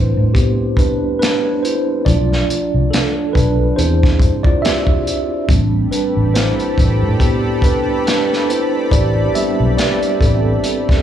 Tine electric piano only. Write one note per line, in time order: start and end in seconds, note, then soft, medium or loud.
0.00 2.08 G3 medium
0.00 2.06 A3 soft
0.00 2.08 C4 soft
0.00 0.79 D4 medium
0.00 0.32 E4 medium
0.00 0.77 B4 medium
0.00 1.63 C5 medium
0.34 0.75 B3 medium
0.34 0.78 G4 medium
0.77 1.18 D4 medium
0.77 1.18 B4 medium
1.19 1.61 D4 medium
1.19 1.60 B4 medium
1.63 2.04 E4 medium
1.63 2.03 C5 medium
2.05 3.73 F3 medium
2.05 3.74 A3 soft
2.05 2.92 D4 medium
2.05 2.88 F4 medium
2.05 2.87 D5 medium
2.91 3.12 D4 medium
2.91 3.10 A4 medium
3.33 3.75 D4 medium
3.33 3.74 B4 medium
3.76 5.02 C4 soft
3.76 5.02 D4 medium
3.76 4.41 E4 medium
3.76 5.02 G#4 soft
3.76 4.46 C5 medium
4.43 4.62 F4 medium
4.43 4.63 D5 loud
4.62 5.27 G4 medium
4.62 5.26 E5 loud
5.49 8.88 G3 medium
5.49 8.88 A3 soft
5.49 8.88 C4 soft
5.49 5.92 D4 medium
5.91 6.32 D4 medium
5.91 6.36 B4 medium
6.34 7.17 E4 medium
6.34 7.23 C5 medium
7.20 7.61 B3 medium
7.20 7.60 G4 medium
7.64 8.04 D4 medium
7.64 8.04 B4 medium
8.07 8.47 D4 medium
8.07 8.46 B4 medium
8.49 8.90 E4 medium
8.49 8.93 C5 medium
8.92 9.32 G4 medium
8.92 9.36 D5 loud
9.35 9.94 G3 medium
9.35 9.94 B3 medium
9.35 9.95 C4 soft
9.35 9.95 D4 medium
9.35 9.75 G4 medium
9.35 9.79 E5 medium
9.77 10.18 G4 medium
9.77 10.17 D5 medium
10.21 11.02 C4 medium
10.21 11.02 A4 medium